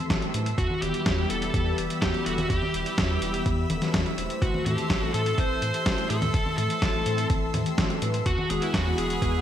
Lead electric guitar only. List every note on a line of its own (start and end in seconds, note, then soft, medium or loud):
0.58 0.82 F#4 medium
0.82 1.30 G4 medium
1.30 1.75 A4 loud
2.02 2.26 G4 loud
2.26 2.49 F#4 loud
2.50 3.42 G4 medium
4.42 4.66 F#4 medium
4.66 5.03 G4 medium
5.03 5.14 F#4 medium
5.14 5.39 A4 medium
5.38 6.06 C5 loud
6.10 6.55 A4 medium
6.58 7.26 A4 medium
8.26 8.50 F#4 loud
8.51 8.62 G#4 loud
8.62 8.74 E4 medium
8.74 8.98 F#4 loud
8.98 9.41 G#4 medium